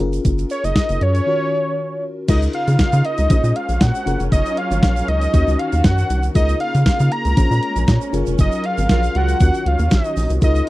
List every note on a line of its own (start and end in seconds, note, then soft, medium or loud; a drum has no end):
0.00 0.19 F#1 loud
0.00 1.24 C#4 medium
0.00 1.24 F4 medium
0.00 1.24 G#4 medium
0.00 1.25 A#4 medium
0.00 closed hi-hat medium
0.13 closed hi-hat medium
0.13 shaker soft
0.25 0.45 F#1 loud
0.25 kick loud
0.25 closed hi-hat medium
0.25 shaker medium
0.38 closed hi-hat soft
0.38 shaker medium
0.50 0.66 C#5 medium
0.50 closed hi-hat medium
0.50 shaker medium
0.64 0.73 F#1 medium
0.64 1.04 D#5 loud
0.64 closed hi-hat medium
0.64 shaker medium
0.76 kick loud
0.76 snare loud
0.76 closed hi-hat medium
0.76 shaker medium
0.89 0.99 F#1 medium
0.89 closed hi-hat medium
0.89 shaker medium
1.01 1.21 F#2 medium
1.01 2.04 C#5 loud
1.01 closed hi-hat medium
1.15 closed hi-hat medium
1.15 shaker soft
1.26 2.26 D#3 medium
1.26 2.26 C#4 medium
1.26 2.27 F4 medium
1.26 2.27 F#4 medium
1.26 2.27 A#4 medium
2.28 2.48 C#2 loud
2.28 3.29 C#3 medium
2.28 4.05 A#3 medium
2.28 3.28 D#4 medium
2.28 3.29 D#4 medium
2.28 3.28 F4 medium
2.28 3.29 F4 medium
2.28 3.28 G#4 medium
2.28 3.29 A#4 medium
2.28 2.41 D#5 medium
2.28 kick loud
2.28 closed hi-hat medium
2.28 crash medium
2.28 shaker medium
2.42 closed hi-hat soft
2.42 shaker medium
2.53 2.78 F5 medium
2.53 closed hi-hat medium
2.68 2.77 C#3 loud
2.68 closed hi-hat medium
2.68 shaker medium
2.79 2.85 C#3 soft
2.79 3.07 F5 loud
2.79 kick loud
2.79 snare loud
2.79 closed hi-hat medium
2.79 shaker medium
2.92 3.02 C#3 loud
2.92 closed hi-hat soft
2.92 shaker medium
3.05 3.57 D#5 loud
3.05 closed hi-hat medium
3.18 3.28 C#2 medium
3.18 closed hi-hat medium
3.18 shaker medium
3.30 3.41 A#1 loud
3.30 4.06 G#3 medium
3.30 4.05 C#4 medium
3.30 6.32 C#4 loud
3.30 4.05 F4 medium
3.30 4.06 G#4 medium
3.30 4.07 C5 medium
3.30 kick loud
3.30 closed hi-hat loud
3.30 shaker medium
3.44 3.53 A#2 loud
3.44 shaker medium
3.56 3.83 F5 medium
3.56 closed hi-hat medium
3.69 3.78 A#1 medium
3.69 closed hi-hat soft
3.69 shaker medium
3.81 3.92 A#2 loud
3.81 4.20 F#5 loud
3.81 kick loud
3.81 snare loud
3.81 closed hi-hat medium
3.81 shaker medium
3.95 shaker medium
4.06 4.17 F#1 medium
4.06 5.32 F#3 medium
4.06 5.31 C#4 medium
4.06 5.31 F4 medium
4.06 5.32 F4 medium
4.06 5.31 G#4 medium
4.06 5.32 A#4 medium
4.06 5.31 A#4 medium
4.06 closed hi-hat medium
4.06 shaker medium
4.20 4.29 F1 medium
4.20 closed hi-hat soft
4.20 shaker medium
4.32 4.42 F#1 loud
4.32 4.59 D#5 loud
4.32 kick loud
4.32 closed hi-hat medium
4.32 shaker medium
4.46 closed hi-hat soft
4.46 shaker medium
4.57 4.82 F5 medium
4.57 closed hi-hat medium
4.71 4.80 G#1 medium
4.71 closed hi-hat medium
4.71 shaker medium
4.83 5.02 A#1 loud
4.83 5.10 F5 loud
4.83 kick loud
4.83 snare loud
4.83 closed hi-hat loud
4.83 shaker medium
4.96 closed hi-hat soft
4.96 shaker medium
5.08 5.28 C#2 medium
5.08 5.60 D#5 loud
5.08 closed hi-hat medium
5.21 closed hi-hat medium
5.21 shaker medium
5.33 5.44 D#2 loud
5.33 6.34 D#3 medium
5.33 6.33 C#4 medium
5.33 6.33 D#4 medium
5.33 6.34 F#4 medium
5.33 6.33 F#4 medium
5.33 6.34 A#4 medium
5.33 kick loud
5.33 closed hi-hat loud
5.33 shaker medium
5.47 5.56 C#2 medium
5.47 shaker soft
5.59 5.86 F5 medium
5.59 closed hi-hat medium
5.73 5.82 D#2 medium
5.73 closed hi-hat soft
5.73 shaker soft
5.84 6.04 F#2 loud
5.84 6.23 F#5 loud
5.84 kick loud
5.84 snare loud
5.84 closed hi-hat medium
5.84 shaker medium
5.98 shaker medium
6.10 6.30 C2 medium
6.10 closed hi-hat medium
6.10 shaker medium
6.23 closed hi-hat soft
6.23 shaker medium
6.34 6.55 C#2 loud
6.34 7.36 C#3 medium
6.34 8.11 A#3 medium
6.34 7.34 D#4 medium
6.34 7.36 D#4 medium
6.34 7.35 F4 medium
6.34 7.35 G#4 medium
6.34 7.35 A#4 medium
6.34 6.59 D#5 loud
6.34 kick loud
6.34 closed hi-hat medium
6.34 shaker medium
6.49 closed hi-hat soft
6.49 shaker medium
6.60 6.84 F5 medium
6.60 closed hi-hat medium
6.75 6.84 C#3 loud
6.75 closed hi-hat medium
6.75 shaker medium
6.86 6.91 C#3 medium
6.86 7.13 F5 loud
6.86 kick loud
6.86 snare loud
6.86 closed hi-hat loud
6.86 shaker medium
7.00 7.09 C#3 loud
7.00 closed hi-hat soft
7.00 shaker medium
7.12 8.13 A#5 loud
7.12 closed hi-hat medium
7.25 7.34 C#2 medium
7.25 closed hi-hat soft
7.25 shaker medium
7.37 7.48 A#1 loud
7.37 8.13 G#3 medium
7.37 8.11 C#4 medium
7.37 9.38 C#4 medium
7.37 8.12 F4 medium
7.37 8.12 G#4 medium
7.37 8.13 C5 medium
7.37 kick loud
7.37 closed hi-hat loud
7.37 shaker medium
7.51 7.60 A#2 loud
7.51 shaker medium
7.63 closed hi-hat medium
7.76 7.85 A#1 medium
7.76 closed hi-hat soft
7.76 shaker medium
7.88 7.98 A#2 loud
7.88 kick loud
7.88 snare loud
7.88 closed hi-hat medium
7.88 shaker medium
8.01 shaker medium
8.13 8.24 F#1 loud
8.13 9.39 F#3 medium
8.13 9.37 C#4 medium
8.13 9.38 F4 medium
8.13 9.38 G#4 medium
8.13 9.39 A#4 medium
8.13 9.38 A#4 medium
8.13 closed hi-hat medium
8.13 shaker medium
8.26 8.36 F1 medium
8.26 closed hi-hat medium
8.26 shaker medium
8.39 8.49 F#1 loud
8.39 8.67 D#5 loud
8.39 kick loud
8.39 closed hi-hat medium
8.39 shaker medium
8.52 closed hi-hat soft
8.52 shaker medium
8.64 8.90 F5 medium
8.64 closed hi-hat medium
8.78 8.87 G#1 loud
8.78 closed hi-hat medium
8.78 shaker medium
8.89 9.09 A#1 loud
8.89 9.01 F#3 loud
8.89 9.01 F4 loud
8.89 9.01 A#4 loud
8.89 9.18 F5 loud
8.89 kick loud
8.89 snare loud
8.89 closed hi-hat loud
8.89 shaker medium
9.03 closed hi-hat soft
9.03 shaker medium
9.15 9.35 C#2 loud
9.15 9.37 F#3 medium
9.15 9.37 F4 medium
9.15 9.37 A#4 loud
9.15 9.69 F#5 loud
9.15 closed hi-hat medium
9.28 closed hi-hat medium
9.28 shaker medium
9.40 9.51 D#2 loud
9.40 10.41 D#3 medium
9.40 10.41 F#3 medium
9.40 10.40 C#4 medium
9.40 10.41 C#4 medium
9.40 10.40 F4 medium
9.40 10.40 F#4 medium
9.40 10.41 A#4 medium
9.40 kick loud
9.40 closed hi-hat loud
9.40 shaker medium
9.54 closed hi-hat soft
9.54 shaker medium
9.66 9.76 C#2 medium
9.66 9.94 F5 medium
9.66 closed hi-hat medium
9.79 9.88 D#2 medium
9.79 closed hi-hat soft
9.79 shaker medium
9.91 10.02 A#1 loud
9.91 10.31 D#5 medium
9.91 kick loud
9.91 snare loud
9.91 closed hi-hat medium
9.91 shaker medium
10.04 closed hi-hat soft
10.04 shaker medium
10.17 10.27 A#1 loud
10.17 open hi-hat medium
10.17 shaker medium
10.30 10.39 C2 medium
10.30 closed hi-hat medium
10.30 shaker soft
10.41 10.62 C#2 loud
10.41 10.69 C#3 medium
10.41 10.69 A#3 medium
10.41 10.69 D#4 medium
10.41 10.69 F4 medium
10.41 10.69 G#4 medium
10.41 10.69 A#4 medium
10.41 10.67 D#5 loud
10.41 kick loud
10.41 closed hi-hat medium
10.41 shaker medium
10.55 closed hi-hat soft
10.55 shaker soft